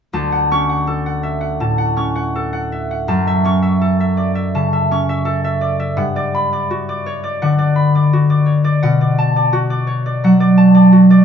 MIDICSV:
0, 0, Header, 1, 2, 480
1, 0, Start_track
1, 0, Key_signature, 2, "major"
1, 0, Tempo, 738916
1, 79, Time_signature, 4, 2, 24, 8
1, 3438, Tempo, 703400
1, 7501, End_track
2, 0, Start_track
2, 0, Title_t, "Harp"
2, 0, Program_c, 0, 46
2, 86, Note_on_c, 0, 38, 50
2, 90, Note_on_c, 0, 81, 48
2, 209, Note_on_c, 0, 78, 41
2, 333, Note_on_c, 0, 61, 40
2, 336, Note_on_c, 0, 85, 62
2, 442, Note_off_c, 0, 78, 0
2, 450, Note_on_c, 0, 78, 40
2, 567, Note_on_c, 0, 69, 44
2, 681, Note_off_c, 0, 78, 0
2, 689, Note_on_c, 0, 78, 38
2, 801, Note_on_c, 0, 76, 39
2, 907, Note_off_c, 0, 78, 0
2, 915, Note_on_c, 0, 78, 38
2, 1006, Note_off_c, 0, 76, 0
2, 1035, Note_off_c, 0, 81, 0
2, 1040, Note_on_c, 0, 45, 42
2, 1044, Note_on_c, 0, 81, 44
2, 1149, Note_off_c, 0, 78, 0
2, 1156, Note_on_c, 0, 78, 39
2, 1270, Note_off_c, 0, 61, 0
2, 1272, Note_off_c, 0, 85, 0
2, 1277, Note_on_c, 0, 61, 38
2, 1281, Note_on_c, 0, 85, 41
2, 1392, Note_off_c, 0, 78, 0
2, 1400, Note_on_c, 0, 78, 46
2, 1522, Note_off_c, 0, 69, 0
2, 1530, Note_on_c, 0, 69, 45
2, 1634, Note_off_c, 0, 78, 0
2, 1642, Note_on_c, 0, 78, 39
2, 1768, Note_on_c, 0, 76, 35
2, 1882, Note_off_c, 0, 78, 0
2, 1890, Note_on_c, 0, 78, 41
2, 1967, Note_off_c, 0, 76, 0
2, 1994, Note_off_c, 0, 81, 0
2, 2000, Note_on_c, 0, 42, 50
2, 2004, Note_on_c, 0, 81, 47
2, 2017, Note_off_c, 0, 45, 0
2, 2021, Note_off_c, 0, 38, 0
2, 2126, Note_on_c, 0, 76, 38
2, 2232, Note_off_c, 0, 61, 0
2, 2234, Note_off_c, 0, 85, 0
2, 2237, Note_on_c, 0, 61, 43
2, 2244, Note_on_c, 0, 85, 54
2, 2346, Note_off_c, 0, 76, 0
2, 2354, Note_on_c, 0, 76, 41
2, 2470, Note_off_c, 0, 69, 0
2, 2478, Note_on_c, 0, 69, 43
2, 2593, Note_off_c, 0, 76, 0
2, 2601, Note_on_c, 0, 76, 41
2, 2710, Note_on_c, 0, 74, 39
2, 2820, Note_off_c, 0, 76, 0
2, 2828, Note_on_c, 0, 76, 37
2, 2922, Note_off_c, 0, 74, 0
2, 2946, Note_off_c, 0, 81, 0
2, 2954, Note_on_c, 0, 49, 40
2, 2955, Note_on_c, 0, 81, 46
2, 3063, Note_off_c, 0, 76, 0
2, 3071, Note_on_c, 0, 76, 40
2, 3185, Note_off_c, 0, 61, 0
2, 3185, Note_off_c, 0, 85, 0
2, 3191, Note_on_c, 0, 61, 43
2, 3195, Note_on_c, 0, 85, 45
2, 3299, Note_off_c, 0, 76, 0
2, 3307, Note_on_c, 0, 76, 44
2, 3404, Note_off_c, 0, 69, 0
2, 3412, Note_on_c, 0, 69, 49
2, 3533, Note_off_c, 0, 76, 0
2, 3541, Note_on_c, 0, 76, 45
2, 3656, Note_on_c, 0, 74, 40
2, 3773, Note_off_c, 0, 76, 0
2, 3781, Note_on_c, 0, 76, 46
2, 3873, Note_off_c, 0, 74, 0
2, 3893, Note_off_c, 0, 78, 0
2, 3898, Note_on_c, 0, 43, 52
2, 3901, Note_on_c, 0, 78, 48
2, 3928, Note_off_c, 0, 69, 0
2, 3931, Note_off_c, 0, 76, 0
2, 3936, Note_off_c, 0, 49, 0
2, 3936, Note_off_c, 0, 61, 0
2, 3936, Note_off_c, 0, 81, 0
2, 3936, Note_off_c, 0, 85, 0
2, 3944, Note_off_c, 0, 42, 0
2, 4030, Note_on_c, 0, 74, 45
2, 4157, Note_on_c, 0, 83, 62
2, 4272, Note_off_c, 0, 74, 0
2, 4280, Note_on_c, 0, 74, 40
2, 4402, Note_on_c, 0, 66, 44
2, 4519, Note_off_c, 0, 74, 0
2, 4527, Note_on_c, 0, 74, 46
2, 4646, Note_on_c, 0, 73, 42
2, 4756, Note_off_c, 0, 74, 0
2, 4764, Note_on_c, 0, 74, 42
2, 4843, Note_off_c, 0, 73, 0
2, 4881, Note_off_c, 0, 78, 0
2, 4889, Note_on_c, 0, 78, 46
2, 4892, Note_on_c, 0, 50, 43
2, 4993, Note_off_c, 0, 74, 0
2, 5002, Note_on_c, 0, 74, 46
2, 5112, Note_off_c, 0, 83, 0
2, 5121, Note_on_c, 0, 83, 48
2, 5245, Note_off_c, 0, 74, 0
2, 5253, Note_on_c, 0, 74, 44
2, 5367, Note_off_c, 0, 66, 0
2, 5376, Note_on_c, 0, 66, 46
2, 5482, Note_off_c, 0, 74, 0
2, 5490, Note_on_c, 0, 74, 41
2, 5600, Note_on_c, 0, 73, 37
2, 5717, Note_off_c, 0, 74, 0
2, 5725, Note_on_c, 0, 74, 49
2, 5810, Note_off_c, 0, 73, 0
2, 5841, Note_off_c, 0, 78, 0
2, 5849, Note_on_c, 0, 78, 53
2, 5853, Note_on_c, 0, 47, 57
2, 5856, Note_off_c, 0, 43, 0
2, 5876, Note_off_c, 0, 50, 0
2, 5966, Note_off_c, 0, 74, 0
2, 5974, Note_on_c, 0, 74, 44
2, 6094, Note_on_c, 0, 81, 57
2, 6207, Note_off_c, 0, 74, 0
2, 6215, Note_on_c, 0, 74, 39
2, 6320, Note_off_c, 0, 66, 0
2, 6328, Note_on_c, 0, 66, 49
2, 6439, Note_off_c, 0, 74, 0
2, 6447, Note_on_c, 0, 74, 48
2, 6562, Note_on_c, 0, 73, 46
2, 6682, Note_off_c, 0, 74, 0
2, 6690, Note_on_c, 0, 74, 44
2, 6763, Note_off_c, 0, 73, 0
2, 6807, Note_off_c, 0, 78, 0
2, 6813, Note_on_c, 0, 54, 45
2, 6816, Note_on_c, 0, 78, 45
2, 6916, Note_off_c, 0, 74, 0
2, 6924, Note_on_c, 0, 74, 44
2, 7035, Note_off_c, 0, 81, 0
2, 7043, Note_on_c, 0, 81, 53
2, 7151, Note_off_c, 0, 74, 0
2, 7159, Note_on_c, 0, 74, 45
2, 7273, Note_off_c, 0, 66, 0
2, 7281, Note_on_c, 0, 66, 46
2, 7396, Note_off_c, 0, 74, 0
2, 7404, Note_on_c, 0, 74, 44
2, 7501, Note_off_c, 0, 47, 0
2, 7501, Note_off_c, 0, 54, 0
2, 7501, Note_off_c, 0, 66, 0
2, 7501, Note_off_c, 0, 74, 0
2, 7501, Note_off_c, 0, 78, 0
2, 7501, Note_off_c, 0, 81, 0
2, 7501, Note_off_c, 0, 83, 0
2, 7501, End_track
0, 0, End_of_file